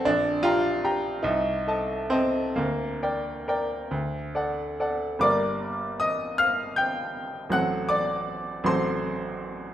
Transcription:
\new Staff \with { instrumentName = "Grand piano" } { \time 6/8 \key g \minor \tempo 4. = 50 << { d'8 f'4 ees'4 c'8 | bes4. r4. | <d'' d'''>4 <ees'' ees'''>8 <f'' f'''>8 <g'' g'''>4 | <fis'' fis'''>8 <d'' d'''>4 <c'' c'''>4. | } \\ { bes,,8 <g' g'' bes''>8 <g' g'' bes''>8 c,8 <a' ees'' a''>8 <a' ees'' a''>8 | d,8 <bes' d'' g''>8 <bes' d'' g''>8 d,8 <a' d'' fis''>8 <a' d'' fis''>8 | <g,, g bes bes'>2. | <a,, fis c' a'>4. <a,, fis c' a'>4. | } >> }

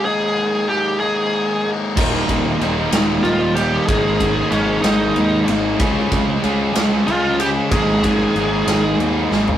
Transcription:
<<
  \new Staff \with { instrumentName = "Lead electric guitar" } { \time 6/8 \key aes \major \tempo 4. = 63 aes'4 g'8 aes'4 r8 | r2 f'8 g'8 | aes'4 des'8 ees'4 r8 | r2 f'8 g'8 |
aes'2 r4 | }
  \new Staff \with { instrumentName = "Distorted electric guitar" } { \time 6/8 \key aes \major r2. | <ees, bes, ees g bes ees'>8 <ees g bes ees'>8 <ees g bes ees'>8 <ees g bes ees'>8 <ees g bes ees'>8 <ees g bes ees'>8 | <aes, ees aes bes ees'>8 <aes bes ees'>8 <ees aes bes ees'>8 <aes bes ees'>8 <ees aes bes ees'>8 <aes bes ees'>8 | <des aes des' f' aes'>8 <des' f' aes'>8 <aes des' f' aes'>8 <des' f' aes'>8 <aes des' f' aes'>8 <des' f' aes'>8 |
<aes, ees aes bes ees'>8 <aes bes ees'>8 <ees aes bes ees'>8 <aes bes ees'>8 <ees aes bes ees'>8 <aes bes ees'>8 | }
  \new Staff \with { instrumentName = "Distorted electric guitar" } { \time 6/8 \key aes \major <aes, ees aes bes ees'>4 <ees aes bes ees'>8 <aes, ees aes bes ees'>4 <aes bes ees'>8 | <ees, bes, ees g bes ees'>4 <ees g bes ees'>8 <ees, bes, ees g bes ees'>4 <ees g bes ees'>8 | <aes, ees aes bes ees'>4 <ees aes bes ees'>8 <aes, ees aes bes ees'>4 <aes bes ees'>8 | <des aes des' f' aes'>4 <aes des' f' aes'>8 <des aes des' f' aes'>4 <des' f' aes'>8 |
<aes, ees aes bes ees'>4 <ees aes bes ees'>8 <aes, ees aes bes ees'>4 <aes bes ees'>8 | }
  \new Staff \with { instrumentName = "Overdriven electric guitar" } { \clef bass \time 6/8 \key aes \major r2. | <ees, bes, ees>2. | <aes, ees aes>2. | <des aes des'>2. |
<aes, ees aes>2. | }
  \new Staff \with { instrumentName = "Fingered electric bass" } { \clef bass \time 6/8 \key aes \major r2. | ees,,8 ees,,8 ees,,8 ees,,8 ees,,4 | aes,,4 aes,,8 aes,,8 ees,8 aes,,8 | des,8 des,8 des,8 des,8 des,4 |
aes,,4 aes,,8 aes,,8 ees,8 aes,,8 | }
  \new DrumStaff \with { instrumentName = "Drums" } \drummode { \time 6/8 r4. r4. | <cymc bd>8 <bd cymr>8 cymr8 <cymr sn>8 cymr8 cymr8 | <bd cymr>8 <bd cymr>8 cymr8 <cymr sn>8 cymr8 cymr8 | <bd cymr>8 <bd cymr>8 cymr8 <cymr sn>8 cymr8 cymr8 |
<bd cymr>8 <bd cymr>8 cymr8 <cymr sn>8 cymr8 sn16 tomfh16 | }
>>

